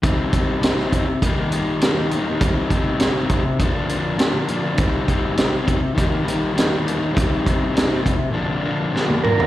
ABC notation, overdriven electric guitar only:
X:1
M:4/4
L:1/16
Q:1/4=101
K:Cm
V:1 name="Overdriven electric guitar"
[C,G,CE]2 [C,G,CE]2 [C,G,CE] [G,CE] [C,G,CE]2 [E,G,B,E] [G,B,E] [E,G,B,E]2 [E,G,B,E] [G,B,E] [E,G,B,E] [G,B,E] | [C,G,CE]2 [C,G,CE]2 [C,G,CE] [G,CE] [C,G,CE]2 [B,,D,F,B,D] [F,B,D] [D,F,B,D]2 [B,,D,F,B,D] [F,B,D] [D,F,B,D] [F,B,D] | [C,G,CE]2 [C,G,CE]2 [C,G,CE] [G,CE] [C,G,CE]2 [E,G,B,E] [G,B,E] [E,G,B,E]2 [E,G,B,E] [G,B,E] [E,G,B,E] [G,B,E] | [C,G,CE]2 [C,G,CE]2 [C,G,CE] [G,CE] [C,G,CE]2 [B,,D,F,B,D] [F,B,D] [D,F,B,D]2 [B,,D,F,B,D] [F,B,D] [D,F,B,D] [F,B,D] |]